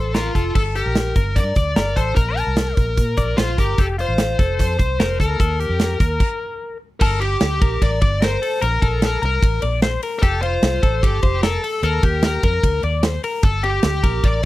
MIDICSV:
0, 0, Header, 1, 5, 480
1, 0, Start_track
1, 0, Tempo, 402414
1, 661, Time_signature, 4, 2, 24, 8
1, 17238, End_track
2, 0, Start_track
2, 0, Title_t, "Clean electric guitar"
2, 0, Program_c, 0, 27
2, 0, Note_on_c, 0, 72, 66
2, 167, Note_off_c, 0, 72, 0
2, 172, Note_on_c, 0, 70, 69
2, 414, Note_off_c, 0, 70, 0
2, 418, Note_on_c, 0, 69, 70
2, 644, Note_off_c, 0, 69, 0
2, 658, Note_on_c, 0, 69, 93
2, 900, Note_off_c, 0, 69, 0
2, 900, Note_on_c, 0, 67, 77
2, 1354, Note_off_c, 0, 67, 0
2, 1383, Note_on_c, 0, 70, 80
2, 1836, Note_off_c, 0, 70, 0
2, 1871, Note_on_c, 0, 74, 63
2, 2098, Note_off_c, 0, 74, 0
2, 2102, Note_on_c, 0, 70, 79
2, 2345, Note_off_c, 0, 70, 0
2, 2350, Note_on_c, 0, 69, 76
2, 2579, Note_off_c, 0, 69, 0
2, 2583, Note_on_c, 0, 70, 105
2, 2834, Note_off_c, 0, 70, 0
2, 2834, Note_on_c, 0, 81, 77
2, 3306, Note_off_c, 0, 81, 0
2, 3306, Note_on_c, 0, 70, 70
2, 3761, Note_off_c, 0, 70, 0
2, 3788, Note_on_c, 0, 74, 68
2, 4027, Note_off_c, 0, 74, 0
2, 4032, Note_on_c, 0, 72, 76
2, 4271, Note_off_c, 0, 72, 0
2, 4276, Note_on_c, 0, 70, 85
2, 4515, Note_off_c, 0, 70, 0
2, 4516, Note_on_c, 0, 67, 100
2, 4747, Note_off_c, 0, 67, 0
2, 4752, Note_on_c, 0, 65, 80
2, 5205, Note_off_c, 0, 65, 0
2, 5235, Note_on_c, 0, 69, 76
2, 5687, Note_off_c, 0, 69, 0
2, 5711, Note_on_c, 0, 72, 67
2, 5954, Note_off_c, 0, 72, 0
2, 5961, Note_on_c, 0, 70, 82
2, 6199, Note_off_c, 0, 70, 0
2, 6206, Note_on_c, 0, 69, 80
2, 6423, Note_off_c, 0, 69, 0
2, 6438, Note_on_c, 0, 69, 109
2, 6678, Note_off_c, 0, 69, 0
2, 6678, Note_on_c, 0, 67, 83
2, 7130, Note_off_c, 0, 67, 0
2, 7162, Note_on_c, 0, 70, 72
2, 7612, Note_off_c, 0, 70, 0
2, 8372, Note_on_c, 0, 69, 101
2, 8602, Note_off_c, 0, 69, 0
2, 8607, Note_on_c, 0, 67, 83
2, 9054, Note_off_c, 0, 67, 0
2, 9084, Note_on_c, 0, 70, 74
2, 9533, Note_off_c, 0, 70, 0
2, 9562, Note_on_c, 0, 74, 77
2, 9798, Note_off_c, 0, 74, 0
2, 9803, Note_on_c, 0, 70, 81
2, 10039, Note_off_c, 0, 70, 0
2, 10044, Note_on_c, 0, 69, 73
2, 10272, Note_off_c, 0, 69, 0
2, 10277, Note_on_c, 0, 70, 117
2, 10513, Note_off_c, 0, 70, 0
2, 10518, Note_on_c, 0, 69, 81
2, 10968, Note_off_c, 0, 69, 0
2, 11000, Note_on_c, 0, 70, 86
2, 11449, Note_off_c, 0, 70, 0
2, 11478, Note_on_c, 0, 74, 77
2, 11716, Note_off_c, 0, 74, 0
2, 11721, Note_on_c, 0, 72, 93
2, 11958, Note_off_c, 0, 72, 0
2, 11966, Note_on_c, 0, 70, 83
2, 12200, Note_off_c, 0, 70, 0
2, 12203, Note_on_c, 0, 67, 122
2, 12434, Note_off_c, 0, 67, 0
2, 12438, Note_on_c, 0, 65, 86
2, 12887, Note_off_c, 0, 65, 0
2, 12914, Note_on_c, 0, 69, 81
2, 13364, Note_off_c, 0, 69, 0
2, 13393, Note_on_c, 0, 72, 77
2, 13629, Note_off_c, 0, 72, 0
2, 13634, Note_on_c, 0, 70, 95
2, 13872, Note_off_c, 0, 70, 0
2, 13881, Note_on_c, 0, 69, 83
2, 14102, Note_off_c, 0, 69, 0
2, 14117, Note_on_c, 0, 69, 101
2, 14352, Note_off_c, 0, 69, 0
2, 14360, Note_on_c, 0, 67, 84
2, 14805, Note_off_c, 0, 67, 0
2, 14838, Note_on_c, 0, 70, 76
2, 15283, Note_off_c, 0, 70, 0
2, 15312, Note_on_c, 0, 74, 75
2, 15557, Note_off_c, 0, 74, 0
2, 15557, Note_on_c, 0, 72, 86
2, 15788, Note_off_c, 0, 72, 0
2, 15793, Note_on_c, 0, 70, 87
2, 16020, Note_off_c, 0, 70, 0
2, 16020, Note_on_c, 0, 69, 112
2, 16260, Note_on_c, 0, 67, 82
2, 16261, Note_off_c, 0, 69, 0
2, 16711, Note_off_c, 0, 67, 0
2, 16740, Note_on_c, 0, 70, 88
2, 17189, Note_off_c, 0, 70, 0
2, 17238, End_track
3, 0, Start_track
3, 0, Title_t, "Lead electric guitar"
3, 0, Program_c, 1, 29
3, 0, Note_on_c, 1, 69, 96
3, 177, Note_on_c, 1, 65, 89
3, 370, Note_off_c, 1, 69, 0
3, 626, Note_off_c, 1, 65, 0
3, 670, Note_on_c, 1, 69, 82
3, 734, Note_off_c, 1, 69, 0
3, 909, Note_on_c, 1, 70, 101
3, 1619, Note_on_c, 1, 74, 85
3, 1650, Note_off_c, 1, 70, 0
3, 2340, Note_on_c, 1, 72, 91
3, 2366, Note_off_c, 1, 74, 0
3, 2564, Note_off_c, 1, 72, 0
3, 2569, Note_on_c, 1, 70, 90
3, 2805, Note_off_c, 1, 70, 0
3, 2819, Note_on_c, 1, 70, 98
3, 4020, Note_on_c, 1, 65, 89
3, 4064, Note_off_c, 1, 70, 0
3, 4250, Note_off_c, 1, 65, 0
3, 4290, Note_on_c, 1, 67, 74
3, 4529, Note_off_c, 1, 67, 0
3, 4531, Note_on_c, 1, 69, 83
3, 4594, Note_off_c, 1, 69, 0
3, 4778, Note_on_c, 1, 72, 94
3, 5481, Note_off_c, 1, 72, 0
3, 5496, Note_on_c, 1, 72, 85
3, 6197, Note_off_c, 1, 72, 0
3, 6202, Note_on_c, 1, 70, 86
3, 8074, Note_off_c, 1, 70, 0
3, 8348, Note_on_c, 1, 70, 89
3, 8588, Note_on_c, 1, 67, 86
3, 8601, Note_off_c, 1, 70, 0
3, 9335, Note_off_c, 1, 67, 0
3, 9335, Note_on_c, 1, 74, 97
3, 9821, Note_off_c, 1, 74, 0
3, 9829, Note_on_c, 1, 72, 102
3, 10261, Note_off_c, 1, 72, 0
3, 10304, Note_on_c, 1, 70, 93
3, 10738, Note_off_c, 1, 70, 0
3, 10800, Note_on_c, 1, 70, 90
3, 11003, Note_off_c, 1, 70, 0
3, 11038, Note_on_c, 1, 70, 83
3, 11464, Note_off_c, 1, 70, 0
3, 12153, Note_on_c, 1, 70, 71
3, 12187, Note_off_c, 1, 70, 0
3, 12192, Note_on_c, 1, 69, 101
3, 12422, Note_off_c, 1, 69, 0
3, 12427, Note_on_c, 1, 72, 115
3, 13155, Note_on_c, 1, 67, 90
3, 13170, Note_off_c, 1, 72, 0
3, 13599, Note_off_c, 1, 67, 0
3, 13636, Note_on_c, 1, 69, 101
3, 14115, Note_off_c, 1, 69, 0
3, 14120, Note_on_c, 1, 70, 89
3, 14598, Note_off_c, 1, 70, 0
3, 14612, Note_on_c, 1, 70, 84
3, 14824, Note_off_c, 1, 70, 0
3, 14839, Note_on_c, 1, 70, 91
3, 15278, Note_off_c, 1, 70, 0
3, 16036, Note_on_c, 1, 69, 83
3, 16252, Note_off_c, 1, 69, 0
3, 16278, Note_on_c, 1, 67, 100
3, 16995, Note_on_c, 1, 74, 93
3, 17009, Note_off_c, 1, 67, 0
3, 17238, Note_off_c, 1, 74, 0
3, 17238, End_track
4, 0, Start_track
4, 0, Title_t, "Fingered electric bass"
4, 0, Program_c, 2, 33
4, 0, Note_on_c, 2, 33, 89
4, 346, Note_off_c, 2, 33, 0
4, 417, Note_on_c, 2, 29, 76
4, 623, Note_off_c, 2, 29, 0
4, 661, Note_on_c, 2, 31, 91
4, 968, Note_off_c, 2, 31, 0
4, 1023, Note_on_c, 2, 34, 82
4, 1330, Note_off_c, 2, 34, 0
4, 1383, Note_on_c, 2, 31, 100
4, 1626, Note_on_c, 2, 43, 93
4, 1644, Note_off_c, 2, 31, 0
4, 1830, Note_off_c, 2, 43, 0
4, 1866, Note_on_c, 2, 38, 89
4, 2070, Note_off_c, 2, 38, 0
4, 2092, Note_on_c, 2, 31, 85
4, 2303, Note_off_c, 2, 31, 0
4, 2344, Note_on_c, 2, 33, 87
4, 2550, Note_off_c, 2, 33, 0
4, 2588, Note_on_c, 2, 34, 101
4, 2895, Note_off_c, 2, 34, 0
4, 2942, Note_on_c, 2, 36, 75
4, 3252, Note_off_c, 2, 36, 0
4, 3310, Note_on_c, 2, 34, 97
4, 3515, Note_off_c, 2, 34, 0
4, 3546, Note_on_c, 2, 46, 93
4, 3753, Note_off_c, 2, 46, 0
4, 3786, Note_on_c, 2, 34, 89
4, 3993, Note_off_c, 2, 34, 0
4, 4032, Note_on_c, 2, 34, 71
4, 4237, Note_off_c, 2, 34, 0
4, 4272, Note_on_c, 2, 31, 77
4, 4477, Note_off_c, 2, 31, 0
4, 4511, Note_on_c, 2, 29, 86
4, 4819, Note_off_c, 2, 29, 0
4, 4871, Note_on_c, 2, 33, 76
4, 5179, Note_off_c, 2, 33, 0
4, 5236, Note_on_c, 2, 29, 89
4, 5440, Note_off_c, 2, 29, 0
4, 5476, Note_on_c, 2, 41, 110
4, 5680, Note_off_c, 2, 41, 0
4, 5720, Note_on_c, 2, 36, 88
4, 5923, Note_off_c, 2, 36, 0
4, 5951, Note_on_c, 2, 29, 100
4, 6158, Note_off_c, 2, 29, 0
4, 6202, Note_on_c, 2, 38, 93
4, 6404, Note_off_c, 2, 38, 0
4, 6437, Note_on_c, 2, 39, 86
4, 6744, Note_off_c, 2, 39, 0
4, 6791, Note_on_c, 2, 41, 69
4, 7101, Note_off_c, 2, 41, 0
4, 7159, Note_on_c, 2, 39, 99
4, 7363, Note_off_c, 2, 39, 0
4, 8359, Note_on_c, 2, 31, 104
4, 8767, Note_off_c, 2, 31, 0
4, 8842, Note_on_c, 2, 38, 82
4, 9045, Note_off_c, 2, 38, 0
4, 9084, Note_on_c, 2, 34, 97
4, 9286, Note_off_c, 2, 34, 0
4, 9323, Note_on_c, 2, 33, 97
4, 9525, Note_off_c, 2, 33, 0
4, 9564, Note_on_c, 2, 31, 106
4, 9970, Note_off_c, 2, 31, 0
4, 10286, Note_on_c, 2, 34, 108
4, 10487, Note_off_c, 2, 34, 0
4, 10522, Note_on_c, 2, 34, 97
4, 10927, Note_off_c, 2, 34, 0
4, 11002, Note_on_c, 2, 36, 93
4, 11204, Note_off_c, 2, 36, 0
4, 11244, Note_on_c, 2, 33, 86
4, 11444, Note_off_c, 2, 33, 0
4, 11483, Note_on_c, 2, 34, 95
4, 11887, Note_off_c, 2, 34, 0
4, 12200, Note_on_c, 2, 29, 87
4, 12605, Note_off_c, 2, 29, 0
4, 12670, Note_on_c, 2, 36, 99
4, 12875, Note_off_c, 2, 36, 0
4, 12918, Note_on_c, 2, 33, 101
4, 13119, Note_off_c, 2, 33, 0
4, 13156, Note_on_c, 2, 31, 95
4, 13358, Note_off_c, 2, 31, 0
4, 13391, Note_on_c, 2, 29, 95
4, 13798, Note_off_c, 2, 29, 0
4, 14107, Note_on_c, 2, 39, 100
4, 14311, Note_off_c, 2, 39, 0
4, 14352, Note_on_c, 2, 39, 93
4, 14757, Note_off_c, 2, 39, 0
4, 14828, Note_on_c, 2, 41, 108
4, 15031, Note_off_c, 2, 41, 0
4, 15071, Note_on_c, 2, 38, 86
4, 15272, Note_off_c, 2, 38, 0
4, 15307, Note_on_c, 2, 39, 86
4, 15713, Note_off_c, 2, 39, 0
4, 16025, Note_on_c, 2, 31, 90
4, 16430, Note_off_c, 2, 31, 0
4, 16510, Note_on_c, 2, 38, 92
4, 16709, Note_off_c, 2, 38, 0
4, 16741, Note_on_c, 2, 34, 103
4, 16944, Note_off_c, 2, 34, 0
4, 16984, Note_on_c, 2, 33, 97
4, 17185, Note_off_c, 2, 33, 0
4, 17238, End_track
5, 0, Start_track
5, 0, Title_t, "Drums"
5, 173, Note_on_c, 9, 42, 71
5, 175, Note_on_c, 9, 38, 90
5, 292, Note_off_c, 9, 42, 0
5, 294, Note_off_c, 9, 38, 0
5, 418, Note_on_c, 9, 36, 72
5, 427, Note_on_c, 9, 42, 70
5, 538, Note_off_c, 9, 36, 0
5, 546, Note_off_c, 9, 42, 0
5, 660, Note_on_c, 9, 49, 87
5, 661, Note_on_c, 9, 36, 99
5, 780, Note_off_c, 9, 36, 0
5, 780, Note_off_c, 9, 49, 0
5, 900, Note_on_c, 9, 42, 70
5, 1020, Note_off_c, 9, 42, 0
5, 1136, Note_on_c, 9, 42, 75
5, 1139, Note_on_c, 9, 38, 99
5, 1256, Note_off_c, 9, 42, 0
5, 1258, Note_off_c, 9, 38, 0
5, 1379, Note_on_c, 9, 42, 69
5, 1381, Note_on_c, 9, 36, 95
5, 1498, Note_off_c, 9, 42, 0
5, 1500, Note_off_c, 9, 36, 0
5, 1624, Note_on_c, 9, 36, 82
5, 1627, Note_on_c, 9, 42, 85
5, 1743, Note_off_c, 9, 36, 0
5, 1746, Note_off_c, 9, 42, 0
5, 1855, Note_on_c, 9, 42, 74
5, 1864, Note_on_c, 9, 36, 89
5, 1974, Note_off_c, 9, 42, 0
5, 1983, Note_off_c, 9, 36, 0
5, 2101, Note_on_c, 9, 42, 73
5, 2104, Note_on_c, 9, 38, 114
5, 2221, Note_off_c, 9, 42, 0
5, 2223, Note_off_c, 9, 38, 0
5, 2345, Note_on_c, 9, 36, 74
5, 2349, Note_on_c, 9, 42, 81
5, 2464, Note_off_c, 9, 36, 0
5, 2468, Note_off_c, 9, 42, 0
5, 2578, Note_on_c, 9, 42, 78
5, 2586, Note_on_c, 9, 36, 100
5, 2698, Note_off_c, 9, 42, 0
5, 2705, Note_off_c, 9, 36, 0
5, 2833, Note_on_c, 9, 42, 73
5, 2952, Note_off_c, 9, 42, 0
5, 3060, Note_on_c, 9, 42, 72
5, 3062, Note_on_c, 9, 38, 103
5, 3179, Note_off_c, 9, 42, 0
5, 3182, Note_off_c, 9, 38, 0
5, 3304, Note_on_c, 9, 42, 72
5, 3308, Note_on_c, 9, 36, 86
5, 3423, Note_off_c, 9, 42, 0
5, 3427, Note_off_c, 9, 36, 0
5, 3548, Note_on_c, 9, 36, 82
5, 3548, Note_on_c, 9, 42, 88
5, 3667, Note_off_c, 9, 36, 0
5, 3667, Note_off_c, 9, 42, 0
5, 3783, Note_on_c, 9, 42, 68
5, 3789, Note_on_c, 9, 36, 81
5, 3902, Note_off_c, 9, 42, 0
5, 3908, Note_off_c, 9, 36, 0
5, 4029, Note_on_c, 9, 42, 75
5, 4031, Note_on_c, 9, 38, 108
5, 4148, Note_off_c, 9, 42, 0
5, 4150, Note_off_c, 9, 38, 0
5, 4273, Note_on_c, 9, 36, 75
5, 4276, Note_on_c, 9, 42, 77
5, 4392, Note_off_c, 9, 36, 0
5, 4395, Note_off_c, 9, 42, 0
5, 4508, Note_on_c, 9, 42, 74
5, 4513, Note_on_c, 9, 36, 103
5, 4628, Note_off_c, 9, 42, 0
5, 4632, Note_off_c, 9, 36, 0
5, 4758, Note_on_c, 9, 42, 71
5, 4878, Note_off_c, 9, 42, 0
5, 4986, Note_on_c, 9, 42, 86
5, 4988, Note_on_c, 9, 38, 99
5, 5105, Note_off_c, 9, 42, 0
5, 5108, Note_off_c, 9, 38, 0
5, 5237, Note_on_c, 9, 36, 103
5, 5239, Note_on_c, 9, 42, 74
5, 5356, Note_off_c, 9, 36, 0
5, 5358, Note_off_c, 9, 42, 0
5, 5479, Note_on_c, 9, 36, 80
5, 5484, Note_on_c, 9, 42, 97
5, 5598, Note_off_c, 9, 36, 0
5, 5604, Note_off_c, 9, 42, 0
5, 5715, Note_on_c, 9, 42, 80
5, 5719, Note_on_c, 9, 36, 90
5, 5834, Note_off_c, 9, 42, 0
5, 5838, Note_off_c, 9, 36, 0
5, 5961, Note_on_c, 9, 42, 79
5, 5964, Note_on_c, 9, 38, 113
5, 6081, Note_off_c, 9, 42, 0
5, 6083, Note_off_c, 9, 38, 0
5, 6200, Note_on_c, 9, 36, 73
5, 6215, Note_on_c, 9, 42, 87
5, 6319, Note_off_c, 9, 36, 0
5, 6334, Note_off_c, 9, 42, 0
5, 6439, Note_on_c, 9, 36, 106
5, 6446, Note_on_c, 9, 42, 79
5, 6558, Note_off_c, 9, 36, 0
5, 6565, Note_off_c, 9, 42, 0
5, 6686, Note_on_c, 9, 42, 82
5, 6805, Note_off_c, 9, 42, 0
5, 6913, Note_on_c, 9, 42, 88
5, 6915, Note_on_c, 9, 38, 94
5, 7032, Note_off_c, 9, 42, 0
5, 7034, Note_off_c, 9, 38, 0
5, 7159, Note_on_c, 9, 36, 106
5, 7162, Note_on_c, 9, 42, 74
5, 7278, Note_off_c, 9, 36, 0
5, 7281, Note_off_c, 9, 42, 0
5, 7397, Note_on_c, 9, 36, 114
5, 7399, Note_on_c, 9, 49, 83
5, 7516, Note_off_c, 9, 36, 0
5, 7518, Note_off_c, 9, 49, 0
5, 8360, Note_on_c, 9, 49, 94
5, 8362, Note_on_c, 9, 36, 102
5, 8480, Note_off_c, 9, 49, 0
5, 8482, Note_off_c, 9, 36, 0
5, 8606, Note_on_c, 9, 51, 65
5, 8725, Note_off_c, 9, 51, 0
5, 8833, Note_on_c, 9, 51, 65
5, 8836, Note_on_c, 9, 38, 105
5, 8952, Note_off_c, 9, 51, 0
5, 8955, Note_off_c, 9, 38, 0
5, 9085, Note_on_c, 9, 36, 112
5, 9085, Note_on_c, 9, 51, 63
5, 9204, Note_off_c, 9, 36, 0
5, 9204, Note_off_c, 9, 51, 0
5, 9324, Note_on_c, 9, 36, 97
5, 9327, Note_on_c, 9, 51, 84
5, 9444, Note_off_c, 9, 36, 0
5, 9446, Note_off_c, 9, 51, 0
5, 9558, Note_on_c, 9, 51, 68
5, 9565, Note_on_c, 9, 36, 100
5, 9678, Note_off_c, 9, 51, 0
5, 9684, Note_off_c, 9, 36, 0
5, 9806, Note_on_c, 9, 51, 67
5, 9808, Note_on_c, 9, 38, 113
5, 9925, Note_off_c, 9, 51, 0
5, 9927, Note_off_c, 9, 38, 0
5, 10051, Note_on_c, 9, 46, 88
5, 10051, Note_on_c, 9, 51, 67
5, 10170, Note_off_c, 9, 46, 0
5, 10170, Note_off_c, 9, 51, 0
5, 10283, Note_on_c, 9, 51, 69
5, 10284, Note_on_c, 9, 44, 69
5, 10403, Note_off_c, 9, 44, 0
5, 10403, Note_off_c, 9, 51, 0
5, 10524, Note_on_c, 9, 36, 85
5, 10528, Note_on_c, 9, 51, 56
5, 10643, Note_off_c, 9, 36, 0
5, 10647, Note_off_c, 9, 51, 0
5, 10759, Note_on_c, 9, 51, 73
5, 10762, Note_on_c, 9, 38, 98
5, 10878, Note_off_c, 9, 51, 0
5, 10881, Note_off_c, 9, 38, 0
5, 11006, Note_on_c, 9, 51, 62
5, 11125, Note_off_c, 9, 51, 0
5, 11243, Note_on_c, 9, 36, 96
5, 11252, Note_on_c, 9, 51, 83
5, 11362, Note_off_c, 9, 36, 0
5, 11371, Note_off_c, 9, 51, 0
5, 11474, Note_on_c, 9, 51, 70
5, 11593, Note_off_c, 9, 51, 0
5, 11715, Note_on_c, 9, 51, 61
5, 11717, Note_on_c, 9, 38, 104
5, 11834, Note_off_c, 9, 51, 0
5, 11836, Note_off_c, 9, 38, 0
5, 11959, Note_on_c, 9, 46, 79
5, 11959, Note_on_c, 9, 51, 75
5, 12078, Note_off_c, 9, 46, 0
5, 12078, Note_off_c, 9, 51, 0
5, 12198, Note_on_c, 9, 36, 105
5, 12198, Note_on_c, 9, 51, 73
5, 12199, Note_on_c, 9, 44, 69
5, 12318, Note_off_c, 9, 36, 0
5, 12318, Note_off_c, 9, 44, 0
5, 12318, Note_off_c, 9, 51, 0
5, 12436, Note_on_c, 9, 51, 68
5, 12555, Note_off_c, 9, 51, 0
5, 12675, Note_on_c, 9, 51, 71
5, 12677, Note_on_c, 9, 38, 110
5, 12794, Note_off_c, 9, 51, 0
5, 12796, Note_off_c, 9, 38, 0
5, 12919, Note_on_c, 9, 36, 102
5, 12920, Note_on_c, 9, 51, 62
5, 13038, Note_off_c, 9, 36, 0
5, 13040, Note_off_c, 9, 51, 0
5, 13157, Note_on_c, 9, 36, 88
5, 13165, Note_on_c, 9, 51, 87
5, 13276, Note_off_c, 9, 36, 0
5, 13284, Note_off_c, 9, 51, 0
5, 13389, Note_on_c, 9, 51, 60
5, 13396, Note_on_c, 9, 36, 93
5, 13508, Note_off_c, 9, 51, 0
5, 13515, Note_off_c, 9, 36, 0
5, 13634, Note_on_c, 9, 51, 70
5, 13636, Note_on_c, 9, 38, 103
5, 13753, Note_off_c, 9, 51, 0
5, 13755, Note_off_c, 9, 38, 0
5, 13882, Note_on_c, 9, 46, 87
5, 13882, Note_on_c, 9, 51, 63
5, 14001, Note_off_c, 9, 46, 0
5, 14001, Note_off_c, 9, 51, 0
5, 14111, Note_on_c, 9, 51, 69
5, 14112, Note_on_c, 9, 44, 72
5, 14230, Note_off_c, 9, 51, 0
5, 14231, Note_off_c, 9, 44, 0
5, 14350, Note_on_c, 9, 51, 65
5, 14351, Note_on_c, 9, 36, 93
5, 14469, Note_off_c, 9, 51, 0
5, 14471, Note_off_c, 9, 36, 0
5, 14582, Note_on_c, 9, 51, 75
5, 14585, Note_on_c, 9, 38, 114
5, 14702, Note_off_c, 9, 51, 0
5, 14704, Note_off_c, 9, 38, 0
5, 14830, Note_on_c, 9, 51, 69
5, 14831, Note_on_c, 9, 36, 100
5, 14949, Note_off_c, 9, 51, 0
5, 14950, Note_off_c, 9, 36, 0
5, 15070, Note_on_c, 9, 36, 90
5, 15073, Note_on_c, 9, 51, 81
5, 15189, Note_off_c, 9, 36, 0
5, 15192, Note_off_c, 9, 51, 0
5, 15303, Note_on_c, 9, 51, 57
5, 15422, Note_off_c, 9, 51, 0
5, 15541, Note_on_c, 9, 51, 67
5, 15543, Note_on_c, 9, 38, 114
5, 15660, Note_off_c, 9, 51, 0
5, 15662, Note_off_c, 9, 38, 0
5, 15789, Note_on_c, 9, 46, 82
5, 15789, Note_on_c, 9, 51, 65
5, 15908, Note_off_c, 9, 46, 0
5, 15908, Note_off_c, 9, 51, 0
5, 16017, Note_on_c, 9, 44, 58
5, 16017, Note_on_c, 9, 51, 70
5, 16023, Note_on_c, 9, 36, 115
5, 16136, Note_off_c, 9, 51, 0
5, 16137, Note_off_c, 9, 44, 0
5, 16143, Note_off_c, 9, 36, 0
5, 16264, Note_on_c, 9, 51, 66
5, 16383, Note_off_c, 9, 51, 0
5, 16493, Note_on_c, 9, 51, 74
5, 16495, Note_on_c, 9, 38, 123
5, 16612, Note_off_c, 9, 51, 0
5, 16615, Note_off_c, 9, 38, 0
5, 16743, Note_on_c, 9, 36, 103
5, 16743, Note_on_c, 9, 51, 70
5, 16862, Note_off_c, 9, 36, 0
5, 16862, Note_off_c, 9, 51, 0
5, 16981, Note_on_c, 9, 36, 92
5, 16981, Note_on_c, 9, 51, 81
5, 17100, Note_off_c, 9, 51, 0
5, 17101, Note_off_c, 9, 36, 0
5, 17238, End_track
0, 0, End_of_file